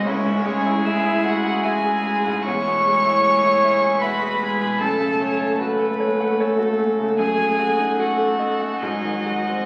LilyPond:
<<
  \new Staff \with { instrumentName = "Violin" } { \time 3/4 \key cis \minor \tempo 4 = 76 cis''4 e''8 fis''8 gis''4 | cis'''2 b''4 | a''4 r2 | gis''4 fis''4 dis''4 | }
  \new Staff \with { instrumentName = "Violin" } { \time 3/4 \key cis \minor e'8 gis'4. fis'4 | e'4 gis'4 fis'8 gis'8 | a'8 cis''8 b'4 a'4 | gis'8 fis'8 a'4 gis'8 fis'8 | }
  \new Staff \with { instrumentName = "Cello" } { \time 3/4 \key cis \minor cis'4 e'8 fis'8 gis'4 | cis''2 b'4 | a'4 r2 | gis'4 fis'4 dis'4 | }
  \new Staff \with { instrumentName = "Grand piano" } { \time 3/4 \key cis \minor cis,16 gis,16 gis16 e'16 gis'16 e'16 e''16 gis''16 e''16 gis'16 gis16 gis,16 | e,16 b,16 gis16 e'16 gis'16 e'16 e''16 gis''16 e''16 gis'16 gis16 b,16 | fis,16 cis16 a16 cis'16 fis'16 a'16 cis''16 fis''16 cis''16 fis'16 a16 cis16 | fis,16 fis16 a16 dis'16 fis'16 a'16 dis''16 fis''16 gis,16 dis16 gis16 bis16 | }
  \new Staff \with { instrumentName = "Viola" } { \clef bass \time 3/4 \key cis \minor gis2. | gis2. | a2.~ | a2 fis4 | }
>>